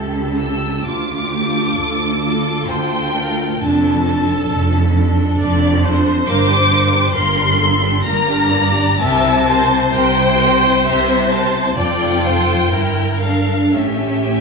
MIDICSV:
0, 0, Header, 1, 6, 480
1, 0, Start_track
1, 0, Key_signature, -1, "minor"
1, 0, Tempo, 921659
1, 445, Time_signature, 3, 2, 24, 8
1, 1880, Tempo, 888889
1, 4280, Tempo, 931677
1, 6680, Tempo, 1015228
1, 7160, Tempo, 1094891
1, 7457, End_track
2, 0, Start_track
2, 0, Title_t, "Violin section"
2, 0, Program_c, 0, 48
2, 208, Note_on_c, 0, 88, 96
2, 431, Note_off_c, 0, 88, 0
2, 450, Note_on_c, 0, 86, 108
2, 1401, Note_off_c, 0, 86, 0
2, 1402, Note_on_c, 0, 79, 121
2, 1877, Note_on_c, 0, 81, 101
2, 1882, Note_off_c, 0, 79, 0
2, 2839, Note_off_c, 0, 81, 0
2, 3309, Note_on_c, 0, 86, 127
2, 3768, Note_off_c, 0, 86, 0
2, 3791, Note_on_c, 0, 84, 127
2, 4277, Note_on_c, 0, 82, 127
2, 4279, Note_off_c, 0, 84, 0
2, 4752, Note_off_c, 0, 82, 0
2, 4762, Note_on_c, 0, 81, 127
2, 5243, Note_off_c, 0, 81, 0
2, 5245, Note_on_c, 0, 79, 126
2, 5721, Note_on_c, 0, 76, 120
2, 5722, Note_off_c, 0, 79, 0
2, 5957, Note_off_c, 0, 76, 0
2, 5959, Note_on_c, 0, 81, 104
2, 6191, Note_on_c, 0, 79, 115
2, 6193, Note_off_c, 0, 81, 0
2, 6916, Note_on_c, 0, 77, 107
2, 6917, Note_off_c, 0, 79, 0
2, 7156, Note_off_c, 0, 77, 0
2, 7162, Note_on_c, 0, 76, 100
2, 7457, Note_off_c, 0, 76, 0
2, 7457, End_track
3, 0, Start_track
3, 0, Title_t, "Viola section"
3, 0, Program_c, 1, 48
3, 0, Note_on_c, 1, 69, 76
3, 432, Note_off_c, 1, 69, 0
3, 446, Note_on_c, 1, 65, 69
3, 680, Note_off_c, 1, 65, 0
3, 688, Note_on_c, 1, 67, 81
3, 922, Note_on_c, 1, 69, 89
3, 923, Note_off_c, 1, 67, 0
3, 1390, Note_off_c, 1, 69, 0
3, 1396, Note_on_c, 1, 72, 80
3, 1639, Note_off_c, 1, 72, 0
3, 1644, Note_on_c, 1, 70, 71
3, 1881, Note_on_c, 1, 69, 95
3, 1882, Note_off_c, 1, 70, 0
3, 2841, Note_off_c, 1, 69, 0
3, 2847, Note_on_c, 1, 74, 99
3, 3077, Note_off_c, 1, 74, 0
3, 3077, Note_on_c, 1, 72, 101
3, 3786, Note_on_c, 1, 70, 94
3, 3791, Note_off_c, 1, 72, 0
3, 4030, Note_off_c, 1, 70, 0
3, 4034, Note_on_c, 1, 69, 87
3, 4275, Note_on_c, 1, 70, 90
3, 4280, Note_off_c, 1, 69, 0
3, 4515, Note_on_c, 1, 74, 85
3, 4519, Note_off_c, 1, 70, 0
3, 4760, Note_off_c, 1, 74, 0
3, 4761, Note_on_c, 1, 76, 97
3, 4997, Note_off_c, 1, 76, 0
3, 5011, Note_on_c, 1, 72, 121
3, 6175, Note_off_c, 1, 72, 0
3, 6194, Note_on_c, 1, 74, 99
3, 6427, Note_off_c, 1, 74, 0
3, 6436, Note_on_c, 1, 72, 98
3, 6683, Note_off_c, 1, 72, 0
3, 6686, Note_on_c, 1, 70, 91
3, 7159, Note_on_c, 1, 69, 74
3, 7163, Note_off_c, 1, 70, 0
3, 7397, Note_on_c, 1, 67, 70
3, 7398, Note_off_c, 1, 69, 0
3, 7457, Note_off_c, 1, 67, 0
3, 7457, End_track
4, 0, Start_track
4, 0, Title_t, "Violin section"
4, 0, Program_c, 2, 48
4, 0, Note_on_c, 2, 67, 54
4, 0, Note_on_c, 2, 69, 57
4, 190, Note_off_c, 2, 69, 0
4, 192, Note_off_c, 2, 67, 0
4, 198, Note_on_c, 2, 67, 59
4, 199, Note_on_c, 2, 69, 57
4, 438, Note_off_c, 2, 67, 0
4, 438, Note_off_c, 2, 69, 0
4, 681, Note_on_c, 2, 65, 61
4, 684, Note_on_c, 2, 69, 59
4, 1147, Note_off_c, 2, 65, 0
4, 1148, Note_off_c, 2, 69, 0
4, 1154, Note_on_c, 2, 69, 67
4, 1155, Note_on_c, 2, 65, 61
4, 1623, Note_off_c, 2, 65, 0
4, 1625, Note_off_c, 2, 69, 0
4, 1630, Note_on_c, 2, 65, 68
4, 1632, Note_on_c, 2, 69, 65
4, 1858, Note_off_c, 2, 69, 0
4, 1865, Note_on_c, 2, 69, 69
4, 1868, Note_on_c, 2, 62, 77
4, 1870, Note_off_c, 2, 65, 0
4, 2106, Note_off_c, 2, 69, 0
4, 2111, Note_off_c, 2, 62, 0
4, 2113, Note_on_c, 2, 69, 66
4, 2117, Note_on_c, 2, 62, 58
4, 2586, Note_off_c, 2, 69, 0
4, 2588, Note_off_c, 2, 62, 0
4, 2595, Note_on_c, 2, 62, 73
4, 2595, Note_on_c, 2, 69, 72
4, 3064, Note_off_c, 2, 62, 0
4, 3065, Note_off_c, 2, 69, 0
4, 3070, Note_on_c, 2, 62, 75
4, 3073, Note_on_c, 2, 69, 77
4, 3305, Note_off_c, 2, 62, 0
4, 3306, Note_off_c, 2, 69, 0
4, 3316, Note_on_c, 2, 58, 83
4, 3317, Note_on_c, 2, 70, 85
4, 3425, Note_off_c, 2, 58, 0
4, 3426, Note_off_c, 2, 70, 0
4, 3433, Note_on_c, 2, 62, 70
4, 3434, Note_on_c, 2, 67, 73
4, 3552, Note_off_c, 2, 62, 0
4, 3552, Note_off_c, 2, 67, 0
4, 3557, Note_on_c, 2, 58, 69
4, 3559, Note_on_c, 2, 70, 60
4, 3674, Note_off_c, 2, 58, 0
4, 3675, Note_off_c, 2, 70, 0
4, 3678, Note_on_c, 2, 67, 72
4, 3681, Note_on_c, 2, 62, 67
4, 3795, Note_off_c, 2, 67, 0
4, 3796, Note_off_c, 2, 62, 0
4, 3802, Note_on_c, 2, 58, 84
4, 3803, Note_on_c, 2, 70, 74
4, 3909, Note_off_c, 2, 58, 0
4, 3910, Note_off_c, 2, 70, 0
4, 3910, Note_on_c, 2, 62, 69
4, 3912, Note_on_c, 2, 67, 70
4, 4032, Note_off_c, 2, 62, 0
4, 4033, Note_off_c, 2, 67, 0
4, 4033, Note_on_c, 2, 58, 67
4, 4036, Note_on_c, 2, 70, 70
4, 4155, Note_off_c, 2, 58, 0
4, 4156, Note_on_c, 2, 62, 74
4, 4157, Note_off_c, 2, 70, 0
4, 4159, Note_on_c, 2, 67, 72
4, 4278, Note_on_c, 2, 58, 77
4, 4280, Note_off_c, 2, 62, 0
4, 4281, Note_off_c, 2, 67, 0
4, 4281, Note_on_c, 2, 70, 83
4, 4390, Note_off_c, 2, 58, 0
4, 4392, Note_off_c, 2, 70, 0
4, 4399, Note_on_c, 2, 62, 67
4, 4401, Note_on_c, 2, 67, 74
4, 4509, Note_on_c, 2, 58, 73
4, 4512, Note_on_c, 2, 70, 79
4, 4520, Note_off_c, 2, 62, 0
4, 4522, Note_off_c, 2, 67, 0
4, 4634, Note_on_c, 2, 67, 68
4, 4637, Note_off_c, 2, 58, 0
4, 4638, Note_off_c, 2, 70, 0
4, 4639, Note_on_c, 2, 62, 66
4, 4757, Note_off_c, 2, 67, 0
4, 4761, Note_off_c, 2, 62, 0
4, 4763, Note_on_c, 2, 67, 87
4, 4764, Note_on_c, 2, 70, 88
4, 4875, Note_off_c, 2, 67, 0
4, 4875, Note_off_c, 2, 70, 0
4, 4889, Note_on_c, 2, 72, 73
4, 4892, Note_on_c, 2, 64, 72
4, 5006, Note_off_c, 2, 72, 0
4, 5007, Note_off_c, 2, 64, 0
4, 5013, Note_on_c, 2, 67, 71
4, 5013, Note_on_c, 2, 70, 70
4, 5127, Note_off_c, 2, 70, 0
4, 5128, Note_off_c, 2, 67, 0
4, 5128, Note_on_c, 2, 64, 67
4, 5128, Note_on_c, 2, 72, 77
4, 5239, Note_on_c, 2, 70, 79
4, 5240, Note_on_c, 2, 67, 74
4, 5245, Note_off_c, 2, 64, 0
4, 5246, Note_off_c, 2, 72, 0
4, 5353, Note_off_c, 2, 67, 0
4, 5353, Note_off_c, 2, 70, 0
4, 5365, Note_on_c, 2, 72, 70
4, 5366, Note_on_c, 2, 64, 73
4, 5481, Note_on_c, 2, 67, 73
4, 5481, Note_on_c, 2, 70, 71
4, 5484, Note_off_c, 2, 72, 0
4, 5485, Note_off_c, 2, 64, 0
4, 5601, Note_on_c, 2, 72, 70
4, 5602, Note_off_c, 2, 67, 0
4, 5602, Note_off_c, 2, 70, 0
4, 5604, Note_on_c, 2, 64, 76
4, 5720, Note_off_c, 2, 72, 0
4, 5721, Note_on_c, 2, 67, 85
4, 5722, Note_off_c, 2, 64, 0
4, 5723, Note_on_c, 2, 70, 71
4, 5831, Note_off_c, 2, 67, 0
4, 5832, Note_off_c, 2, 70, 0
4, 5838, Note_on_c, 2, 64, 69
4, 5840, Note_on_c, 2, 72, 66
4, 5956, Note_off_c, 2, 64, 0
4, 5957, Note_off_c, 2, 72, 0
4, 5958, Note_on_c, 2, 70, 76
4, 5960, Note_on_c, 2, 67, 69
4, 6075, Note_off_c, 2, 70, 0
4, 6076, Note_off_c, 2, 67, 0
4, 6086, Note_on_c, 2, 64, 73
4, 6086, Note_on_c, 2, 72, 70
4, 6196, Note_on_c, 2, 65, 90
4, 6196, Note_on_c, 2, 69, 85
4, 6197, Note_off_c, 2, 72, 0
4, 6198, Note_off_c, 2, 64, 0
4, 6663, Note_off_c, 2, 65, 0
4, 6663, Note_off_c, 2, 69, 0
4, 6680, Note_on_c, 2, 64, 84
4, 6682, Note_on_c, 2, 70, 78
4, 6917, Note_off_c, 2, 64, 0
4, 6918, Note_off_c, 2, 70, 0
4, 6924, Note_on_c, 2, 62, 72
4, 6924, Note_on_c, 2, 69, 68
4, 7160, Note_off_c, 2, 62, 0
4, 7163, Note_on_c, 2, 67, 81
4, 7164, Note_off_c, 2, 69, 0
4, 7164, Note_on_c, 2, 61, 84
4, 7457, Note_off_c, 2, 61, 0
4, 7457, Note_off_c, 2, 67, 0
4, 7457, End_track
5, 0, Start_track
5, 0, Title_t, "Cello section"
5, 0, Program_c, 3, 48
5, 0, Note_on_c, 3, 37, 80
5, 389, Note_off_c, 3, 37, 0
5, 445, Note_on_c, 3, 38, 80
5, 865, Note_off_c, 3, 38, 0
5, 921, Note_on_c, 3, 38, 70
5, 1342, Note_off_c, 3, 38, 0
5, 1395, Note_on_c, 3, 38, 89
5, 1822, Note_off_c, 3, 38, 0
5, 1882, Note_on_c, 3, 41, 93
5, 2310, Note_off_c, 3, 41, 0
5, 2364, Note_on_c, 3, 41, 87
5, 2783, Note_off_c, 3, 41, 0
5, 2846, Note_on_c, 3, 41, 105
5, 3261, Note_off_c, 3, 41, 0
5, 3313, Note_on_c, 3, 43, 88
5, 3734, Note_off_c, 3, 43, 0
5, 3791, Note_on_c, 3, 43, 84
5, 4220, Note_off_c, 3, 43, 0
5, 4284, Note_on_c, 3, 43, 109
5, 4708, Note_off_c, 3, 43, 0
5, 4762, Note_on_c, 3, 48, 100
5, 5185, Note_off_c, 3, 48, 0
5, 5247, Note_on_c, 3, 48, 91
5, 5668, Note_off_c, 3, 48, 0
5, 5728, Note_on_c, 3, 48, 102
5, 6139, Note_off_c, 3, 48, 0
5, 6191, Note_on_c, 3, 41, 89
5, 6660, Note_off_c, 3, 41, 0
5, 6679, Note_on_c, 3, 43, 76
5, 7160, Note_off_c, 3, 43, 0
5, 7161, Note_on_c, 3, 45, 77
5, 7457, Note_off_c, 3, 45, 0
5, 7457, End_track
6, 0, Start_track
6, 0, Title_t, "Double bass section"
6, 0, Program_c, 4, 48
6, 0, Note_on_c, 4, 37, 74
6, 387, Note_off_c, 4, 37, 0
6, 442, Note_on_c, 4, 38, 77
6, 863, Note_off_c, 4, 38, 0
6, 918, Note_on_c, 4, 38, 81
6, 1341, Note_off_c, 4, 38, 0
6, 1398, Note_on_c, 4, 38, 80
6, 1823, Note_off_c, 4, 38, 0
6, 1879, Note_on_c, 4, 29, 87
6, 2309, Note_off_c, 4, 29, 0
6, 2365, Note_on_c, 4, 29, 92
6, 2783, Note_off_c, 4, 29, 0
6, 2840, Note_on_c, 4, 29, 91
6, 3258, Note_off_c, 4, 29, 0
6, 3312, Note_on_c, 4, 31, 88
6, 3734, Note_off_c, 4, 31, 0
6, 3786, Note_on_c, 4, 31, 102
6, 4218, Note_off_c, 4, 31, 0
6, 4276, Note_on_c, 4, 31, 93
6, 4705, Note_off_c, 4, 31, 0
6, 4763, Note_on_c, 4, 36, 103
6, 5186, Note_off_c, 4, 36, 0
6, 5249, Note_on_c, 4, 36, 103
6, 5668, Note_off_c, 4, 36, 0
6, 5729, Note_on_c, 4, 36, 96
6, 6140, Note_off_c, 4, 36, 0
6, 6198, Note_on_c, 4, 29, 95
6, 6664, Note_off_c, 4, 29, 0
6, 6688, Note_on_c, 4, 31, 80
6, 7164, Note_off_c, 4, 31, 0
6, 7169, Note_on_c, 4, 33, 78
6, 7457, Note_off_c, 4, 33, 0
6, 7457, End_track
0, 0, End_of_file